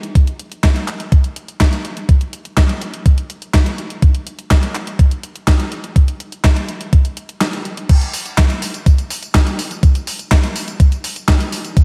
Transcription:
0.03 closed hi-hat
0.15 kick, closed hi-hat
0.27 closed hi-hat
0.40 closed hi-hat
0.52 closed hi-hat
0.64 kick, snare, clap, closed hi-hat
0.76 closed hi-hat
0.88 clap, closed hi-hat
1.00 closed hi-hat
1.12 kick, closed hi-hat
1.24 closed hi-hat
1.36 closed hi-hat
1.48 closed hi-hat
1.60 kick, snare, clap, closed hi-hat
1.73 closed hi-hat
1.85 closed hi-hat
1.97 closed hi-hat
2.09 kick, closed hi-hat
2.21 closed hi-hat
2.33 closed hi-hat
2.45 closed hi-hat
2.57 kick, snare, clap, closed hi-hat
2.69 closed hi-hat
2.82 closed hi-hat
2.94 closed hi-hat
3.06 kick, closed hi-hat
3.18 closed hi-hat
3.30 closed hi-hat
3.42 closed hi-hat
3.54 kick, snare, clap, closed hi-hat
3.66 closed hi-hat
3.78 closed hi-hat
3.90 closed hi-hat
4.02 kick, closed hi-hat
4.15 closed hi-hat
4.27 closed hi-hat
4.39 closed hi-hat
4.51 kick, snare, clap, closed hi-hat
4.63 closed hi-hat
4.75 clap, closed hi-hat
4.87 closed hi-hat
4.99 kick, closed hi-hat
5.11 closed hi-hat
5.23 closed hi-hat
5.35 closed hi-hat
5.48 kick, snare, clap, closed hi-hat
5.60 closed hi-hat
5.72 closed hi-hat
5.84 closed hi-hat
5.96 kick, closed hi-hat
6.08 closed hi-hat
6.20 closed hi-hat
6.32 closed hi-hat
6.44 kick, snare, clap, closed hi-hat
6.56 closed hi-hat
6.69 closed hi-hat
6.81 closed hi-hat
6.93 kick, closed hi-hat
7.05 closed hi-hat
7.17 closed hi-hat
7.29 closed hi-hat
7.41 snare, clap, closed hi-hat
7.53 closed hi-hat
7.65 closed hi-hat
7.77 closed hi-hat
7.89 kick, closed hi-hat, crash, tambourine
8.01 closed hi-hat, tambourine
8.14 open hi-hat, tambourine
8.26 closed hi-hat, tambourine
8.38 kick, snare, clap, closed hi-hat, tambourine
8.50 closed hi-hat, tambourine
8.62 open hi-hat, tambourine
8.74 closed hi-hat, tambourine
8.86 kick, closed hi-hat, tambourine
8.98 closed hi-hat, tambourine
9.10 open hi-hat, tambourine
9.23 closed hi-hat, tambourine
9.35 kick, snare, clap, closed hi-hat, tambourine
9.47 closed hi-hat, tambourine
9.59 open hi-hat, tambourine
9.71 closed hi-hat, tambourine
9.83 kick, closed hi-hat, tambourine
9.95 closed hi-hat, tambourine
10.07 open hi-hat, tambourine
10.19 closed hi-hat, tambourine
10.31 kick, snare, clap, closed hi-hat, tambourine
10.44 closed hi-hat, tambourine
10.56 open hi-hat, tambourine
10.68 closed hi-hat, tambourine
10.80 kick, closed hi-hat, tambourine
10.92 closed hi-hat, tambourine
11.04 open hi-hat, tambourine
11.16 closed hi-hat, tambourine
11.28 kick, snare, clap, closed hi-hat, tambourine
11.40 closed hi-hat, tambourine
11.52 open hi-hat, tambourine
11.65 closed hi-hat, tambourine
11.77 kick, closed hi-hat, tambourine

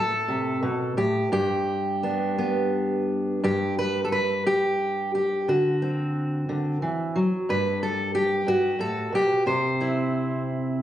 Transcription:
Already playing: A2 A4
0.28 C3
0.63 B2
0.97 A2 G4
1.32 G2 G4
2.03 B3 D4
2.38 B3
3.44 G2 G4
3.79 B4
4.05 A4
4.12 B4
4.47 G4
5.15 G4
5.48 D3 F#4
5.82 C4
6.49 D3
6.82 E3
7.16 F#3
7.49 G2 B4
7.83 A4
8.15 G4
8.46 G2 F#4
8.79 A2 A4
9.12 B2 G4
9.46 C3 C5
9.81 C4 E4

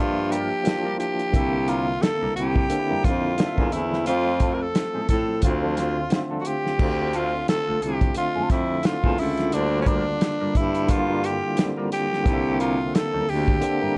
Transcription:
Already playing: G2 F3 A#3 D4 F4 G4
0.00 E5
0.17 muted clean electric guitar stroke
0.31 G3 D4 F4 G4 A#4, closed hi-hat
0.52 muted clean electric guitar stroke
0.63 F3 A#3 D4 E4, closed hi-hat
0.67 snare
0.74 F4
0.85 G3 D4 F4 A#4
1.00 G4, muted clean electric guitar stroke, closed hi-hat
1.19 muted clean electric guitar stroke, closed hi-hat
1.32 C2 D3 A#3 C4 E5, kick, closed hi-hat
1.68 G3 D4 E4 F4 A#4, closed hi-hat
2.02 A4, muted clean electric guitar stroke, snare, closed hi-hat
2.22 C2 G3 D4 E4 A#4
2.36 C2 G4, muted clean electric guitar stroke, closed hi-hat
2.56 muted clean electric guitar stroke, kick
2.68 D3 A#3 C4 D4, muted clean electric guitar stroke, closed hi-hat
2.79 E4
2.90 F2 G3 D4 E4 A#4
3.04 F2 F4, kick, snare, closed hi-hat
3.24 muted clean electric guitar stroke
3.36 D3 A#3 C4 D4, muted clean electric guitar stroke, snare, closed hi-hat
3.47 E5
3.58 E2 G3 D4 E4 A#4, kick
3.72 E2 E4, muted clean electric guitar stroke, closed hi-hat
3.92 muted clean electric guitar stroke, snare
4.04 F2 F3 A3 C4 F4, closed hi-hat
4.40 A3 C4 E4 A4, kick, closed hi-hat
4.54 A#4
4.61 A4
4.75 muted clean electric guitar stroke, snare, closed hi-hat
4.94 A2 A3 C4 E4 A4
5.09 A2 A4, kick, closed hi-hat
5.29 muted clean electric guitar stroke
5.41 D2 D3 A3 C4 F4, muted clean electric guitar stroke, kick, closed hi-hat
5.63 F3 C4 D4 A4
5.77 muted clean electric guitar stroke, snare, closed hi-hat
5.97 muted clean electric guitar stroke
6.09 D3 A3 C4 F4, muted clean electric guitar stroke, snare, closed hi-hat
6.31 F3 C4 D4 A4
6.41 F#4
6.45 G4, muted clean electric guitar stroke, closed hi-hat
6.65 muted clean electric guitar stroke, snare
6.78 D2 D3 A3 C4 F4, kick, crash
7.13 A3 C4 F4 A4, closed hi-hat
7.48 A4, muted clean electric guitar stroke, snare, closed hi-hat
7.67 C2 A3 C4 F4 A4
7.82 C2 G4, muted clean electric guitar stroke, closed hi-hat
8.01 muted clean electric guitar stroke, kick, closed hi-hat
8.14 D3 A3 C4 F4, muted clean electric guitar stroke, closed hi-hat
8.36 F2 A3 C4 F4 A4
8.50 F2 E4, kick, snare, closed hi-hat
8.70 muted clean electric guitar stroke
8.82 D3 A3 C4 F4, muted clean electric guitar stroke, snare, closed hi-hat
8.86 E4
8.93 F4
9.04 E2 A3 C4 F4 A4, kick
9.18 C#2 E4, open hi-hat
9.38 muted clean electric guitar stroke, snare, closed hi-hat
9.50 D2 D3 G3 A#3 D4, closed hi-hat
9.54 E4
9.60 F4
9.82 C#4
9.86 G3 D4 F4 A#4, kick, closed hi-hat
10.21 muted clean electric guitar stroke, snare, closed hi-hat
10.41 G2 G3 D4 F4 A#4
10.55 G2 E4, kick, closed hi-hat
10.75 muted clean electric guitar stroke, closed hi-hat
10.87 D3 G3 A#3 E4 F4, muted clean electric guitar stroke, kick, closed hi-hat
10.97 F4
11.08 G3 D4 F4 A#4
11.24 G4, closed hi-hat
11.43 muted clean electric guitar stroke
11.55 D3 G3 A#3 C4, muted clean electric guitar stroke, snare, closed hi-hat
11.77 G3 D4 F4 A#4
11.92 G4, muted clean electric guitar stroke, closed hi-hat
12.11 muted clean electric guitar stroke, snare
12.23 C2 D3 A#3 C4 D#4, kick, closed hi-hat
12.33 E5
12.60 G3 D4 E4 F4 A#4, closed hi-hat
12.94 A4, muted clean electric guitar stroke, snare, closed hi-hat
13.13 D2 G3 D4 E4 A#4
13.27 D2 G4, muted clean electric guitar stroke, open hi-hat
13.48 muted clean electric guitar stroke, kick
13.61 D3 A#3 C4 D4, muted clean electric guitar stroke, closed hi-hat
13.82 G2 G3 D4 E4 A#4

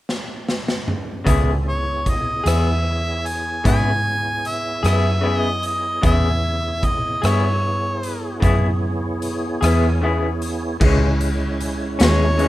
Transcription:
0.09 snare
0.49 snare
0.68 snare
0.88 mid tom
1.24 C#2 C#3 B3 C4 E4 F4 G#4 A4 D5, kick, closed hi-hat
1.66 B3 E4 G#4 C#5
2.06 D#5, kick, closed hi-hat
2.44 E2 B3 E4 G#4, cross-stick, closed hi-hat
2.49 E5
3.26 G#5, closed hi-hat
3.64 G#2 C#3 B3 E4 G#4 G#5, kick, closed hi-hat
4.45 E5, closed hi-hat
4.83 F#2 B3 E4 G#4, cross-stick, closed hi-hat
4.87 E5
5.21 C#3 B3 E4 G#4
5.38 D#5
5.63 D#5, closed hi-hat
6.01 E2 C#3 B3 E4 G#4 C#5, kick, closed hi-hat
6.06 E5
6.83 D#5, kick, closed hi-hat
7.22 G2 B3 E4 G#4, cross-stick, closed hi-hat
7.26 C#5
8.03 closed hi-hat
8.40 F#2 C#3 B3 E4 G#4, kick, closed hi-hat
9.22 closed hi-hat
9.61 E2 B3 E4 G#4, cross-stick, closed hi-hat
10.02 C#3 B3 E4 G#4
10.42 closed hi-hat
10.80 C#2 C#3 E3 G#3 C#4 E4 C#5, kick, crash
11.21 closed hi-hat
11.60 closed hi-hat
11.99 D#2 E3 G#3 C#4, snare, closed hi-hat
12.03 C#5
12.38 C#3 E3 G#3 C#4, closed hi-hat

